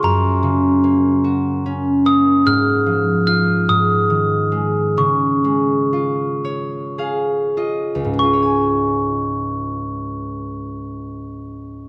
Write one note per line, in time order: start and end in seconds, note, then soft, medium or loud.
0.00 2.51 F#2 medium
0.00 1.50 G#4 soft
0.00 0.72 C#5 soft
0.04 2.02 A#5 medium
0.43 2.51 C#3 soft
0.84 2.05 A#3 soft
1.24 2.92 F#4 soft
1.66 4.56 C#4 soft
2.05 5.27 A#3 soft
2.05 2.47 D#6 medium
2.46 3.68 G#2 medium
2.46 3.26 F6 medium
2.86 3.73 F3 soft
3.27 5.80 F4 soft
3.27 3.46 F6 medium
3.69 5.03 G#2 soft
3.69 5.02 D#6 medium
4.10 5.03 D#3 soft
4.52 5.03 G#3 soft
4.97 8.25 C#3 medium
4.97 6.96 C#6 medium
5.44 8.12 G#3 soft
5.93 7.57 F4 soft
6.45 8.33 C#5 soft
6.98 9.26 G#4 soft
6.98 8.65 F5 medium
7.57 8.23 F4 soft
7.57 9.36 D#5 medium
7.95 11.85 C#2 soft
8.04 11.89 G#2 soft
8.14 11.58 G#3 soft
8.19 11.56 F4 soft
8.19 11.52 C#6 medium
8.33 11.66 C#5 soft
8.42 11.75 G#5 soft